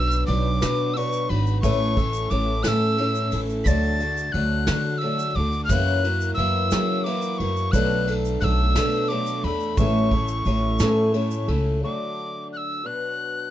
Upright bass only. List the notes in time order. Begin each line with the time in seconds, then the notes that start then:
Already playing: B1
0.28 B1
0.62 B2
1.30 G#1
1.63 A1
2.31 A1
2.65 A2
3.32 A1
3.66 D2
4.34 D2
4.68 D3
5.36 D2
5.69 F#2
6.38 F#2
6.72 F#3
7.40 F#2
7.73 B1
8.42 B1
8.76 B2
9.44 E2
9.77 A1
10.46 A1
10.80 A2
11.48 C#2